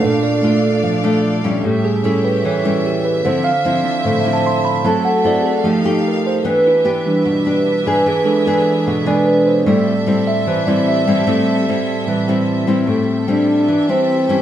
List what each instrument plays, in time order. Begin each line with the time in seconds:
Already playing: nylon-string guitar A3 D4 F4, string section A4 F5
0.02 tine electric piano A#2 A3 D4 A4, nylon-string guitar A#2, string section D4 D5
0.23 tine electric piano D5
0.43 nylon-string guitar A3 D4 F4
0.83 nylon-string guitar F3
1.04 nylon-string guitar A3 D4 F4
1.44 nylon-string guitar G3 C#4 E4
1.63 tine electric piano A2 G3 C#4 G4, nylon-string guitar A2, string section C#4 G4 E5
1.85 tine electric piano G#4
2.04 nylon-string guitar G3 C#4 E4, tine electric piano A4
2.25 tine electric piano B4
2.45 nylon-string guitar E3, tine electric piano C#5
2.64 nylon-string guitar G3 C#4 E4, tine electric piano E4
2.86 tine electric piano G4
3.05 tine electric piano B4
3.24 nylon-string guitar D3 F3 C4 E4, string section D4 C5, tine electric piano C5
3.44 tine electric piano F5
3.65 nylon-string guitar F3 C4 E4
3.84 tine electric piano D3 F3 C4
4.04 nylon-string guitar A2, tine electric piano C5
4.19 tine electric piano E5
4.25 nylon-string guitar F3 C4 E4
4.33 tine electric piano A5
4.47 tine electric piano C6
4.65 tine electric piano B5
4.85 nylon-string guitar F#3 C4 E4 A4, tine electric piano F#3 A3 E4 A5, string section C4 F#4 A4
5.05 tine electric piano F#5
5.24 nylon-string guitar C4 E4 A4, tine electric piano D5
5.41 tine electric piano G#4
5.46 tine electric piano A4
5.64 nylon-string guitar F3 A3 D#4 G4, tine electric piano F3 A3 D#4 G4, string section D#4 G4 F5
5.84 nylon-string guitar A3 D#4 G4, tine electric piano A4
6.08 tine electric piano A#4
6.27 tine electric piano C5
6.44 nylon-string guitar E3 B3 D4 G4, string section D4 B4 E5, tine electric piano B4
6.67 tine electric piano E4
6.85 nylon-string guitar B3 D4 G4
7.06 tine electric piano E3 G3 D4
7.25 nylon-string guitar B2
7.46 nylon-string guitar B3 D4 G4
7.86 nylon-string guitar B3 D4 G#4, tine electric piano B4
8.06 nylon-string guitar E3, string section G#4, tine electric piano G#4
8.24 tine electric piano E3 G#3 D4 A4
8.46 nylon-string guitar B3 D4 G#4, tine electric piano B4
8.87 nylon-string guitar B2
9.06 tine electric piano E3 G#3 D4 D5, nylon-string guitar B3 D4 G#4
9.28 tine electric piano B4
9.47 tine electric piano C5
9.66 tine electric piano A2 G3 C4 D5, nylon-string guitar A2 G3 C4 E4, string section C4 G4 A4 E5
10.07 nylon-string guitar G3 C4 E4
10.27 tine electric piano E5
10.47 nylon-string guitar E3, tine electric piano C5
10.67 nylon-string guitar G3 C4 E4, tine electric piano D5
10.88 tine electric piano E5
11.07 nylon-string guitar G3 C4 E4
11.27 nylon-string guitar A2 G3 C4 E4, tine electric piano A2 G3 C4
11.68 nylon-string guitar G3 C4 E4
12.07 tine electric piano A2 G3 C4, nylon-string guitar E3
12.28 nylon-string guitar G3 C4 E4
12.67 nylon-string guitar G3 C4 E4
12.87 nylon-string guitar A2, string section C4 G4 A4 E5
13.28 nylon-string guitar G3 C4 E4, trombone D4
13.68 nylon-string guitar E3
13.89 nylon-string guitar G3 C4 E4, trombone C4
14.29 nylon-string guitar G3 C#4 E4